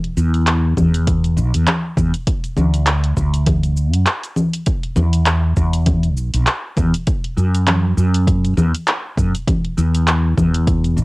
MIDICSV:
0, 0, Header, 1, 3, 480
1, 0, Start_track
1, 0, Tempo, 600000
1, 1818, Time_signature, 4, 2, 24, 8
1, 8834, End_track
2, 0, Start_track
2, 0, Title_t, "Fretless electric bass"
2, 0, Program_c, 0, 35
2, 135, Note_on_c, 0, 40, 96
2, 589, Note_off_c, 0, 40, 0
2, 618, Note_on_c, 0, 40, 79
2, 1094, Note_on_c, 0, 35, 93
2, 1106, Note_off_c, 0, 40, 0
2, 1210, Note_off_c, 0, 35, 0
2, 1236, Note_on_c, 0, 40, 76
2, 1322, Note_off_c, 0, 40, 0
2, 1577, Note_on_c, 0, 40, 93
2, 1692, Note_off_c, 0, 40, 0
2, 2060, Note_on_c, 0, 38, 100
2, 2512, Note_off_c, 0, 38, 0
2, 2536, Note_on_c, 0, 38, 84
2, 3150, Note_off_c, 0, 38, 0
2, 3150, Note_on_c, 0, 42, 102
2, 3239, Note_off_c, 0, 42, 0
2, 3974, Note_on_c, 0, 40, 100
2, 4429, Note_off_c, 0, 40, 0
2, 4455, Note_on_c, 0, 40, 84
2, 4934, Note_off_c, 0, 40, 0
2, 4934, Note_on_c, 0, 35, 97
2, 5050, Note_off_c, 0, 35, 0
2, 5071, Note_on_c, 0, 35, 73
2, 5159, Note_off_c, 0, 35, 0
2, 5419, Note_on_c, 0, 40, 97
2, 5533, Note_off_c, 0, 40, 0
2, 5897, Note_on_c, 0, 42, 102
2, 6350, Note_off_c, 0, 42, 0
2, 6377, Note_on_c, 0, 42, 84
2, 6830, Note_off_c, 0, 42, 0
2, 6857, Note_on_c, 0, 40, 102
2, 6971, Note_off_c, 0, 40, 0
2, 7341, Note_on_c, 0, 42, 86
2, 7453, Note_off_c, 0, 42, 0
2, 7820, Note_on_c, 0, 40, 101
2, 8272, Note_off_c, 0, 40, 0
2, 8299, Note_on_c, 0, 40, 79
2, 8775, Note_on_c, 0, 35, 93
2, 8787, Note_off_c, 0, 40, 0
2, 8834, Note_off_c, 0, 35, 0
2, 8834, End_track
3, 0, Start_track
3, 0, Title_t, "Drums"
3, 32, Note_on_c, 9, 42, 30
3, 112, Note_off_c, 9, 42, 0
3, 138, Note_on_c, 9, 82, 73
3, 218, Note_off_c, 9, 82, 0
3, 272, Note_on_c, 9, 42, 43
3, 276, Note_on_c, 9, 82, 31
3, 352, Note_off_c, 9, 42, 0
3, 356, Note_off_c, 9, 82, 0
3, 375, Note_on_c, 9, 39, 96
3, 375, Note_on_c, 9, 42, 57
3, 379, Note_on_c, 9, 82, 40
3, 455, Note_off_c, 9, 39, 0
3, 455, Note_off_c, 9, 42, 0
3, 459, Note_off_c, 9, 82, 0
3, 616, Note_on_c, 9, 64, 79
3, 618, Note_on_c, 9, 36, 55
3, 620, Note_on_c, 9, 82, 76
3, 696, Note_off_c, 9, 64, 0
3, 698, Note_off_c, 9, 36, 0
3, 700, Note_off_c, 9, 82, 0
3, 754, Note_on_c, 9, 42, 47
3, 758, Note_on_c, 9, 82, 32
3, 834, Note_off_c, 9, 42, 0
3, 838, Note_off_c, 9, 82, 0
3, 858, Note_on_c, 9, 36, 108
3, 858, Note_on_c, 9, 42, 59
3, 862, Note_on_c, 9, 82, 45
3, 938, Note_off_c, 9, 36, 0
3, 938, Note_off_c, 9, 42, 0
3, 942, Note_off_c, 9, 82, 0
3, 994, Note_on_c, 9, 42, 33
3, 998, Note_on_c, 9, 82, 30
3, 1074, Note_off_c, 9, 42, 0
3, 1078, Note_off_c, 9, 82, 0
3, 1100, Note_on_c, 9, 82, 75
3, 1180, Note_off_c, 9, 82, 0
3, 1233, Note_on_c, 9, 42, 47
3, 1237, Note_on_c, 9, 82, 31
3, 1313, Note_off_c, 9, 42, 0
3, 1317, Note_off_c, 9, 82, 0
3, 1339, Note_on_c, 9, 39, 102
3, 1339, Note_on_c, 9, 42, 57
3, 1339, Note_on_c, 9, 64, 85
3, 1343, Note_on_c, 9, 82, 44
3, 1419, Note_off_c, 9, 39, 0
3, 1419, Note_off_c, 9, 42, 0
3, 1419, Note_off_c, 9, 64, 0
3, 1423, Note_off_c, 9, 82, 0
3, 1578, Note_on_c, 9, 36, 100
3, 1582, Note_on_c, 9, 82, 76
3, 1658, Note_off_c, 9, 36, 0
3, 1662, Note_off_c, 9, 82, 0
3, 1713, Note_on_c, 9, 42, 46
3, 1717, Note_on_c, 9, 82, 31
3, 1793, Note_off_c, 9, 42, 0
3, 1797, Note_off_c, 9, 82, 0
3, 1818, Note_on_c, 9, 36, 114
3, 1818, Note_on_c, 9, 42, 59
3, 1822, Note_on_c, 9, 82, 45
3, 1898, Note_off_c, 9, 36, 0
3, 1898, Note_off_c, 9, 42, 0
3, 1902, Note_off_c, 9, 82, 0
3, 1952, Note_on_c, 9, 42, 32
3, 1956, Note_on_c, 9, 82, 28
3, 2032, Note_off_c, 9, 42, 0
3, 2036, Note_off_c, 9, 82, 0
3, 2054, Note_on_c, 9, 64, 84
3, 2058, Note_on_c, 9, 82, 74
3, 2134, Note_off_c, 9, 64, 0
3, 2138, Note_off_c, 9, 82, 0
3, 2191, Note_on_c, 9, 42, 44
3, 2195, Note_on_c, 9, 82, 31
3, 2271, Note_off_c, 9, 42, 0
3, 2275, Note_off_c, 9, 82, 0
3, 2293, Note_on_c, 9, 39, 99
3, 2293, Note_on_c, 9, 42, 59
3, 2298, Note_on_c, 9, 82, 41
3, 2373, Note_off_c, 9, 39, 0
3, 2373, Note_off_c, 9, 42, 0
3, 2378, Note_off_c, 9, 82, 0
3, 2431, Note_on_c, 9, 42, 36
3, 2511, Note_off_c, 9, 42, 0
3, 2536, Note_on_c, 9, 36, 58
3, 2539, Note_on_c, 9, 82, 79
3, 2616, Note_off_c, 9, 36, 0
3, 2619, Note_off_c, 9, 82, 0
3, 2670, Note_on_c, 9, 42, 46
3, 2675, Note_on_c, 9, 82, 33
3, 2750, Note_off_c, 9, 42, 0
3, 2755, Note_off_c, 9, 82, 0
3, 2772, Note_on_c, 9, 42, 59
3, 2772, Note_on_c, 9, 64, 83
3, 2776, Note_on_c, 9, 36, 106
3, 2776, Note_on_c, 9, 82, 44
3, 2852, Note_off_c, 9, 42, 0
3, 2852, Note_off_c, 9, 64, 0
3, 2856, Note_off_c, 9, 36, 0
3, 2856, Note_off_c, 9, 82, 0
3, 2907, Note_on_c, 9, 42, 33
3, 2911, Note_on_c, 9, 82, 31
3, 2987, Note_off_c, 9, 42, 0
3, 2991, Note_off_c, 9, 82, 0
3, 3015, Note_on_c, 9, 82, 74
3, 3095, Note_off_c, 9, 82, 0
3, 3148, Note_on_c, 9, 42, 49
3, 3152, Note_on_c, 9, 82, 32
3, 3228, Note_off_c, 9, 42, 0
3, 3232, Note_off_c, 9, 82, 0
3, 3252, Note_on_c, 9, 39, 101
3, 3252, Note_on_c, 9, 42, 57
3, 3256, Note_on_c, 9, 82, 44
3, 3332, Note_off_c, 9, 39, 0
3, 3332, Note_off_c, 9, 42, 0
3, 3336, Note_off_c, 9, 82, 0
3, 3388, Note_on_c, 9, 42, 33
3, 3392, Note_on_c, 9, 82, 32
3, 3468, Note_off_c, 9, 42, 0
3, 3472, Note_off_c, 9, 82, 0
3, 3491, Note_on_c, 9, 64, 79
3, 3495, Note_on_c, 9, 82, 71
3, 3571, Note_off_c, 9, 64, 0
3, 3575, Note_off_c, 9, 82, 0
3, 3628, Note_on_c, 9, 42, 46
3, 3632, Note_on_c, 9, 82, 31
3, 3708, Note_off_c, 9, 42, 0
3, 3712, Note_off_c, 9, 82, 0
3, 3730, Note_on_c, 9, 42, 59
3, 3734, Note_on_c, 9, 82, 45
3, 3735, Note_on_c, 9, 36, 115
3, 3810, Note_off_c, 9, 42, 0
3, 3814, Note_off_c, 9, 82, 0
3, 3815, Note_off_c, 9, 36, 0
3, 3867, Note_on_c, 9, 42, 31
3, 3947, Note_off_c, 9, 42, 0
3, 3968, Note_on_c, 9, 64, 79
3, 3973, Note_on_c, 9, 82, 79
3, 4048, Note_off_c, 9, 64, 0
3, 4053, Note_off_c, 9, 82, 0
3, 4105, Note_on_c, 9, 42, 45
3, 4109, Note_on_c, 9, 82, 32
3, 4185, Note_off_c, 9, 42, 0
3, 4189, Note_off_c, 9, 82, 0
3, 4211, Note_on_c, 9, 39, 102
3, 4211, Note_on_c, 9, 42, 59
3, 4215, Note_on_c, 9, 82, 41
3, 4291, Note_off_c, 9, 39, 0
3, 4291, Note_off_c, 9, 42, 0
3, 4295, Note_off_c, 9, 82, 0
3, 4454, Note_on_c, 9, 82, 79
3, 4456, Note_on_c, 9, 36, 58
3, 4534, Note_off_c, 9, 82, 0
3, 4536, Note_off_c, 9, 36, 0
3, 4587, Note_on_c, 9, 42, 50
3, 4591, Note_on_c, 9, 82, 35
3, 4667, Note_off_c, 9, 42, 0
3, 4671, Note_off_c, 9, 82, 0
3, 4690, Note_on_c, 9, 42, 57
3, 4690, Note_on_c, 9, 64, 85
3, 4694, Note_on_c, 9, 82, 43
3, 4696, Note_on_c, 9, 36, 110
3, 4770, Note_off_c, 9, 42, 0
3, 4770, Note_off_c, 9, 64, 0
3, 4774, Note_off_c, 9, 82, 0
3, 4776, Note_off_c, 9, 36, 0
3, 4827, Note_on_c, 9, 42, 32
3, 4831, Note_on_c, 9, 82, 31
3, 4907, Note_off_c, 9, 42, 0
3, 4911, Note_off_c, 9, 82, 0
3, 4938, Note_on_c, 9, 82, 78
3, 5018, Note_off_c, 9, 82, 0
3, 5069, Note_on_c, 9, 42, 47
3, 5073, Note_on_c, 9, 82, 34
3, 5149, Note_off_c, 9, 42, 0
3, 5153, Note_off_c, 9, 82, 0
3, 5173, Note_on_c, 9, 39, 105
3, 5173, Note_on_c, 9, 42, 61
3, 5177, Note_on_c, 9, 82, 43
3, 5253, Note_off_c, 9, 39, 0
3, 5253, Note_off_c, 9, 42, 0
3, 5257, Note_off_c, 9, 82, 0
3, 5413, Note_on_c, 9, 64, 75
3, 5417, Note_on_c, 9, 82, 74
3, 5418, Note_on_c, 9, 36, 97
3, 5493, Note_off_c, 9, 64, 0
3, 5497, Note_off_c, 9, 82, 0
3, 5498, Note_off_c, 9, 36, 0
3, 5552, Note_on_c, 9, 42, 46
3, 5556, Note_on_c, 9, 82, 34
3, 5632, Note_off_c, 9, 42, 0
3, 5636, Note_off_c, 9, 82, 0
3, 5655, Note_on_c, 9, 42, 58
3, 5658, Note_on_c, 9, 36, 125
3, 5659, Note_on_c, 9, 82, 47
3, 5735, Note_off_c, 9, 42, 0
3, 5738, Note_off_c, 9, 36, 0
3, 5739, Note_off_c, 9, 82, 0
3, 5794, Note_on_c, 9, 42, 30
3, 5874, Note_off_c, 9, 42, 0
3, 5902, Note_on_c, 9, 82, 76
3, 5982, Note_off_c, 9, 82, 0
3, 6036, Note_on_c, 9, 42, 43
3, 6040, Note_on_c, 9, 82, 34
3, 6116, Note_off_c, 9, 42, 0
3, 6120, Note_off_c, 9, 82, 0
3, 6138, Note_on_c, 9, 39, 105
3, 6138, Note_on_c, 9, 42, 59
3, 6138, Note_on_c, 9, 64, 75
3, 6142, Note_on_c, 9, 82, 44
3, 6218, Note_off_c, 9, 39, 0
3, 6218, Note_off_c, 9, 42, 0
3, 6218, Note_off_c, 9, 64, 0
3, 6222, Note_off_c, 9, 82, 0
3, 6382, Note_on_c, 9, 82, 80
3, 6462, Note_off_c, 9, 82, 0
3, 6515, Note_on_c, 9, 42, 46
3, 6519, Note_on_c, 9, 82, 35
3, 6595, Note_off_c, 9, 42, 0
3, 6599, Note_off_c, 9, 82, 0
3, 6619, Note_on_c, 9, 36, 121
3, 6621, Note_on_c, 9, 42, 60
3, 6625, Note_on_c, 9, 82, 46
3, 6699, Note_off_c, 9, 36, 0
3, 6701, Note_off_c, 9, 42, 0
3, 6705, Note_off_c, 9, 82, 0
3, 6757, Note_on_c, 9, 42, 31
3, 6761, Note_on_c, 9, 82, 33
3, 6837, Note_off_c, 9, 42, 0
3, 6841, Note_off_c, 9, 82, 0
3, 6859, Note_on_c, 9, 64, 74
3, 6863, Note_on_c, 9, 82, 79
3, 6939, Note_off_c, 9, 64, 0
3, 6943, Note_off_c, 9, 82, 0
3, 6997, Note_on_c, 9, 42, 47
3, 7001, Note_on_c, 9, 82, 35
3, 7077, Note_off_c, 9, 42, 0
3, 7081, Note_off_c, 9, 82, 0
3, 7101, Note_on_c, 9, 39, 109
3, 7101, Note_on_c, 9, 42, 57
3, 7105, Note_on_c, 9, 82, 44
3, 7181, Note_off_c, 9, 39, 0
3, 7181, Note_off_c, 9, 42, 0
3, 7185, Note_off_c, 9, 82, 0
3, 7339, Note_on_c, 9, 36, 99
3, 7346, Note_on_c, 9, 82, 80
3, 7419, Note_off_c, 9, 36, 0
3, 7426, Note_off_c, 9, 82, 0
3, 7477, Note_on_c, 9, 42, 46
3, 7481, Note_on_c, 9, 82, 36
3, 7557, Note_off_c, 9, 42, 0
3, 7561, Note_off_c, 9, 82, 0
3, 7579, Note_on_c, 9, 36, 127
3, 7581, Note_on_c, 9, 42, 57
3, 7581, Note_on_c, 9, 64, 73
3, 7585, Note_on_c, 9, 82, 49
3, 7659, Note_off_c, 9, 36, 0
3, 7661, Note_off_c, 9, 42, 0
3, 7661, Note_off_c, 9, 64, 0
3, 7665, Note_off_c, 9, 82, 0
3, 7716, Note_on_c, 9, 42, 29
3, 7796, Note_off_c, 9, 42, 0
3, 7823, Note_on_c, 9, 82, 80
3, 7903, Note_off_c, 9, 82, 0
3, 7955, Note_on_c, 9, 42, 44
3, 7959, Note_on_c, 9, 82, 34
3, 8035, Note_off_c, 9, 42, 0
3, 8039, Note_off_c, 9, 82, 0
3, 8058, Note_on_c, 9, 39, 105
3, 8058, Note_on_c, 9, 42, 55
3, 8063, Note_on_c, 9, 82, 46
3, 8138, Note_off_c, 9, 39, 0
3, 8138, Note_off_c, 9, 42, 0
3, 8143, Note_off_c, 9, 82, 0
3, 8299, Note_on_c, 9, 36, 63
3, 8300, Note_on_c, 9, 64, 75
3, 8304, Note_on_c, 9, 82, 82
3, 8379, Note_off_c, 9, 36, 0
3, 8380, Note_off_c, 9, 64, 0
3, 8384, Note_off_c, 9, 82, 0
3, 8434, Note_on_c, 9, 42, 46
3, 8438, Note_on_c, 9, 82, 35
3, 8514, Note_off_c, 9, 42, 0
3, 8518, Note_off_c, 9, 82, 0
3, 8538, Note_on_c, 9, 36, 127
3, 8538, Note_on_c, 9, 42, 53
3, 8542, Note_on_c, 9, 82, 48
3, 8618, Note_off_c, 9, 36, 0
3, 8618, Note_off_c, 9, 42, 0
3, 8622, Note_off_c, 9, 82, 0
3, 8675, Note_on_c, 9, 42, 32
3, 8679, Note_on_c, 9, 82, 33
3, 8755, Note_off_c, 9, 42, 0
3, 8759, Note_off_c, 9, 82, 0
3, 8781, Note_on_c, 9, 82, 83
3, 8834, Note_off_c, 9, 82, 0
3, 8834, End_track
0, 0, End_of_file